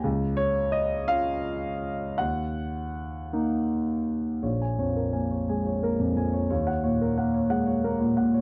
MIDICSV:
0, 0, Header, 1, 2, 480
1, 0, Start_track
1, 0, Key_signature, -5, "minor"
1, 0, Tempo, 703400
1, 27, Time_signature, 6, 3, 24, 8
1, 988, Tempo, 747198
1, 2908, Tempo, 695249
1, 3868, Tempo, 674157
1, 5708, End_track
2, 0, Start_track
2, 0, Title_t, "Grand piano"
2, 0, Program_c, 0, 0
2, 0, Control_c, 0, 64, 127
2, 25, Note_on_c, 0, 37, 65
2, 38, Control_c, 0, 64, 0
2, 140, Control_c, 0, 64, 127
2, 250, Note_on_c, 0, 73, 89
2, 491, Note_on_c, 0, 75, 78
2, 494, Note_off_c, 0, 73, 0
2, 735, Note_on_c, 0, 77, 99
2, 739, Note_off_c, 0, 75, 0
2, 745, Note_on_c, 0, 65, 54
2, 747, Note_on_c, 0, 61, 44
2, 1439, Note_off_c, 0, 37, 0
2, 1441, Note_off_c, 0, 65, 0
2, 1442, Note_off_c, 0, 61, 0
2, 1457, Note_on_c, 0, 78, 74
2, 1462, Note_off_c, 0, 77, 0
2, 1467, Note_on_c, 0, 39, 50
2, 1479, Control_c, 0, 64, 0
2, 1599, Control_c, 0, 64, 127
2, 2188, Note_off_c, 0, 78, 0
2, 2197, Note_on_c, 0, 58, 45
2, 2198, Note_on_c, 0, 63, 46
2, 2883, Note_off_c, 0, 39, 0
2, 2884, Note_off_c, 0, 58, 0
2, 2885, Note_off_c, 0, 63, 0
2, 2902, Note_on_c, 0, 73, 40
2, 2903, Note_on_c, 0, 34, 40
2, 2920, Control_c, 0, 64, 0
2, 3022, Control_c, 0, 64, 127
2, 3032, Note_on_c, 0, 80, 43
2, 3099, Note_off_c, 0, 73, 0
2, 3150, Note_on_c, 0, 41, 39
2, 3153, Note_on_c, 0, 73, 43
2, 3226, Note_off_c, 0, 80, 0
2, 3272, Note_on_c, 0, 70, 35
2, 3347, Note_off_c, 0, 73, 0
2, 3383, Note_on_c, 0, 58, 37
2, 3386, Note_on_c, 0, 80, 37
2, 3466, Note_off_c, 0, 70, 0
2, 3511, Note_on_c, 0, 73, 39
2, 3538, Note_off_c, 0, 41, 0
2, 3582, Note_off_c, 0, 80, 0
2, 3636, Note_on_c, 0, 56, 39
2, 3637, Note_on_c, 0, 80, 40
2, 3702, Note_off_c, 0, 73, 0
2, 3757, Note_on_c, 0, 73, 41
2, 3768, Note_off_c, 0, 58, 0
2, 3822, Note_off_c, 0, 80, 0
2, 3868, Note_off_c, 0, 56, 0
2, 3868, Note_on_c, 0, 58, 41
2, 3872, Note_on_c, 0, 70, 46
2, 3941, Note_off_c, 0, 73, 0
2, 3988, Note_on_c, 0, 41, 45
2, 4060, Note_off_c, 0, 70, 0
2, 4098, Note_off_c, 0, 41, 0
2, 4109, Note_on_c, 0, 41, 44
2, 4111, Note_on_c, 0, 80, 42
2, 4228, Note_on_c, 0, 73, 45
2, 4250, Note_off_c, 0, 58, 0
2, 4300, Note_off_c, 0, 80, 0
2, 4314, Note_off_c, 0, 34, 0
2, 4338, Note_off_c, 0, 73, 0
2, 4347, Note_off_c, 0, 41, 0
2, 4348, Note_on_c, 0, 73, 48
2, 4349, Note_on_c, 0, 39, 52
2, 4358, Control_c, 0, 64, 0
2, 4467, Note_on_c, 0, 78, 55
2, 4479, Control_c, 0, 64, 127
2, 4541, Note_off_c, 0, 73, 0
2, 4586, Note_on_c, 0, 46, 42
2, 4587, Note_on_c, 0, 73, 47
2, 4660, Note_off_c, 0, 78, 0
2, 4712, Note_on_c, 0, 70, 44
2, 4779, Note_off_c, 0, 73, 0
2, 4829, Note_on_c, 0, 78, 49
2, 4831, Note_on_c, 0, 58, 51
2, 4901, Note_off_c, 0, 70, 0
2, 4946, Note_on_c, 0, 73, 46
2, 4970, Note_off_c, 0, 46, 0
2, 5019, Note_off_c, 0, 78, 0
2, 5058, Note_on_c, 0, 56, 45
2, 5059, Note_on_c, 0, 78, 55
2, 5137, Note_off_c, 0, 73, 0
2, 5177, Note_on_c, 0, 73, 49
2, 5211, Note_off_c, 0, 58, 0
2, 5253, Note_off_c, 0, 78, 0
2, 5298, Note_on_c, 0, 58, 49
2, 5300, Note_off_c, 0, 56, 0
2, 5302, Note_on_c, 0, 70, 45
2, 5372, Note_off_c, 0, 73, 0
2, 5413, Note_on_c, 0, 46, 52
2, 5495, Note_off_c, 0, 70, 0
2, 5522, Note_off_c, 0, 46, 0
2, 5533, Note_on_c, 0, 46, 46
2, 5536, Note_on_c, 0, 78, 47
2, 5658, Note_on_c, 0, 73, 48
2, 5688, Note_off_c, 0, 58, 0
2, 5708, Note_off_c, 0, 39, 0
2, 5708, Note_off_c, 0, 46, 0
2, 5708, Note_off_c, 0, 73, 0
2, 5708, Note_off_c, 0, 78, 0
2, 5708, End_track
0, 0, End_of_file